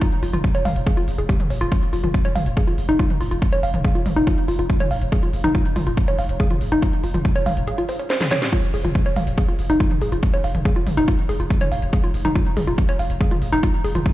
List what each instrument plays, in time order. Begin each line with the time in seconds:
0.01 synth arpeggio sound F4, kick, closed hi-hat
0.12 sub bass F1, closed hi-hat
0.23 sub bass F1, synth arpeggio sound F4, open hi-hat
0.33 sub bass F1, synth arpeggio sound F4, closed hi-hat, mid tom
0.44 kick, closed hi-hat
0.55 sub bass F1, synth arpeggio sound C#5, closed hi-hat
0.65 sub bass F1, synth arpeggio sound F5, mid tom, open hi-hat
0.76 sub bass F1, closed hi-hat
0.87 synth arpeggio sound G#4, kick, closed hi-hat
0.97 sub bass F1, synth arpeggio sound F4, closed hi-hat
1.08 sub bass F1, open hi-hat
1.19 sub bass F1, synth arpeggio sound G#4, closed hi-hat
1.29 synth arpeggio sound G4, kick, closed hi-hat
1.40 sub bass F1, closed hi-hat, mid tom
1.50 sub bass F1, synth arpeggio sound C#5, open hi-hat
1.61 sub bass F1, synth arpeggio sound F4, closed hi-hat
1.72 synth arpeggio sound F4, kick, closed hi-hat
1.82 sub bass F1, closed hi-hat
1.93 sub bass F1, synth arpeggio sound F4, open hi-hat
2.04 sub bass F1, synth arpeggio sound F4, closed hi-hat, mid tom
2.14 kick, closed hi-hat
2.25 sub bass F1, synth arpeggio sound C#5, closed hi-hat
2.36 sub bass F1, synth arpeggio sound F5, mid tom, open hi-hat
2.46 sub bass F1, closed hi-hat
2.57 synth arpeggio sound G#4, kick, closed hi-hat
2.68 sub bass F1, synth arpeggio sound F4, closed hi-hat
2.78 sub bass F1, open hi-hat
2.89 sub bass F1, synth arpeggio sound D#4, closed hi-hat
2.99 synth arpeggio sound F4, kick, closed hi-hat
3.10 sub bass F1, closed hi-hat, mid tom
3.21 sub bass F1, synth arpeggio sound F4, open hi-hat
3.31 sub bass F1, synth arpeggio sound F4, closed hi-hat
3.42 kick, closed hi-hat
3.53 sub bass F1, synth arpeggio sound C#5, closed hi-hat
3.63 sub bass F1, synth arpeggio sound F5, open hi-hat
3.74 sub bass F1, closed hi-hat, mid tom
3.85 synth arpeggio sound G#4, kick, closed hi-hat
3.95 sub bass F1, synth arpeggio sound F4, closed hi-hat
4.06 sub bass F1, mid tom, open hi-hat
4.16 sub bass F1, synth arpeggio sound D#4, closed hi-hat
4.27 synth arpeggio sound F4, kick, closed hi-hat
4.38 sub bass F1, closed hi-hat
4.48 sub bass F1, synth arpeggio sound F4, open hi-hat
4.59 sub bass F1, synth arpeggio sound F4, closed hi-hat
4.70 kick, closed hi-hat
4.80 sub bass F1, synth arpeggio sound C#5, closed hi-hat, mid tom
4.91 sub bass F1, synth arpeggio sound F5, open hi-hat
5.02 sub bass F1, closed hi-hat
5.12 synth arpeggio sound G#4, kick, closed hi-hat
5.23 sub bass F1, synth arpeggio sound F4, closed hi-hat
5.33 sub bass F1, open hi-hat
5.44 sub bass F1, synth arpeggio sound D#4, closed hi-hat, mid tom
5.55 kick, closed hi-hat
5.65 sub bass F1, closed hi-hat
5.76 sub bass F1, synth arpeggio sound F4, mid tom, open hi-hat
5.87 sub bass F1, synth arpeggio sound F4, closed hi-hat
5.97 kick, closed hi-hat
6.08 sub bass F1, synth arpeggio sound C#5, closed hi-hat
6.19 sub bass F1, synth arpeggio sound F5, open hi-hat
6.29 sub bass F1, closed hi-hat
6.40 synth arpeggio sound G#4, kick, closed hi-hat
6.50 sub bass F1, synth arpeggio sound F4, closed hi-hat, mid tom
6.61 sub bass F1, open hi-hat
6.72 sub bass F1, synth arpeggio sound D#4, closed hi-hat
6.82 kick, closed hi-hat
6.93 sub bass F1, closed hi-hat
7.04 sub bass F1, synth arpeggio sound F4, open hi-hat
7.14 sub bass F1, synth arpeggio sound F4, closed hi-hat, mid tom
7.25 kick, closed hi-hat
7.36 sub bass F1, synth arpeggio sound C#5, closed hi-hat
7.46 sub bass F1, synth arpeggio sound F5, mid tom, open hi-hat
7.57 sub bass F1, closed hi-hat
7.67 synth arpeggio sound G#4, closed hi-hat
7.78 synth arpeggio sound F4, closed hi-hat
7.89 synth arpeggio sound C5, open hi-hat
7.99 synth arpeggio sound C#5, closed hi-hat
8.10 synth arpeggio sound C5, snare, closed hi-hat
8.21 snare, closed hi-hat, mid tom
8.31 synth arpeggio sound C#5, snare, mid tom, open hi-hat
8.42 synth arpeggio sound G4, snare, closed hi-hat
8.53 synth arpeggio sound F4, kick, closed hi-hat
8.63 sub bass F1, closed hi-hat
8.74 sub bass F1, synth arpeggio sound G#4, open hi-hat
8.85 sub bass F1, synth arpeggio sound F4, closed hi-hat, mid tom
8.95 kick, closed hi-hat
9.06 sub bass F1, synth arpeggio sound C#5, closed hi-hat
9.16 sub bass F1, synth arpeggio sound F5, mid tom, open hi-hat
9.27 sub bass F1, closed hi-hat
9.38 synth arpeggio sound G#4, kick, closed hi-hat
9.48 sub bass F1, synth arpeggio sound F4, closed hi-hat
9.59 sub bass F1, open hi-hat
9.70 sub bass F1, synth arpeggio sound D#4, closed hi-hat
9.80 synth arpeggio sound F4, kick, closed hi-hat
9.91 sub bass F1, closed hi-hat, mid tom
10.02 sub bass F1, synth arpeggio sound G#4, open hi-hat
10.12 sub bass F1, synth arpeggio sound F4, closed hi-hat
10.23 kick, closed hi-hat
10.33 sub bass F1, synth arpeggio sound C#5, closed hi-hat
10.44 sub bass F1, synth arpeggio sound F5, open hi-hat
10.55 sub bass F1, closed hi-hat, mid tom
10.65 synth arpeggio sound G#4, kick, closed hi-hat
10.76 sub bass F1, synth arpeggio sound F4, closed hi-hat
10.87 sub bass F1, mid tom, open hi-hat
10.97 sub bass F1, synth arpeggio sound D#4, closed hi-hat
11.08 synth arpeggio sound F4, kick, closed hi-hat
11.19 sub bass F1, closed hi-hat
11.29 sub bass F1, synth arpeggio sound G#4, open hi-hat
11.40 sub bass F1, synth arpeggio sound F4, closed hi-hat
11.50 kick, closed hi-hat
11.61 sub bass F1, synth arpeggio sound C#5, closed hi-hat, mid tom
11.72 sub bass F1, synth arpeggio sound F5, open hi-hat
11.82 sub bass F1, closed hi-hat
11.93 synth arpeggio sound G#4, kick, closed hi-hat
12.04 sub bass F1, synth arpeggio sound F4, closed hi-hat
12.14 sub bass F1, open hi-hat
12.25 sub bass F1, synth arpeggio sound D#4, closed hi-hat, mid tom
12.35 synth arpeggio sound F4, kick, closed hi-hat
12.46 sub bass F1, closed hi-hat
12.57 sub bass F1, synth arpeggio sound G#4, mid tom, open hi-hat
12.67 sub bass F1, synth arpeggio sound F4, closed hi-hat
12.78 kick, closed hi-hat
12.89 sub bass F1, synth arpeggio sound C#5, closed hi-hat
12.99 sub bass F1, synth arpeggio sound F5, open hi-hat
13.10 sub bass F1, closed hi-hat
13.21 synth arpeggio sound G#4, kick, closed hi-hat
13.31 sub bass F1, synth arpeggio sound F4, closed hi-hat, mid tom
13.42 sub bass F1, open hi-hat
13.53 sub bass F1, synth arpeggio sound D#4, closed hi-hat
13.63 synth arpeggio sound F4, kick, closed hi-hat
13.74 sub bass F1, closed hi-hat
13.84 sub bass F1, synth arpeggio sound G#4, open hi-hat
13.95 sub bass F1, synth arpeggio sound F4, closed hi-hat, mid tom
14.06 kick, closed hi-hat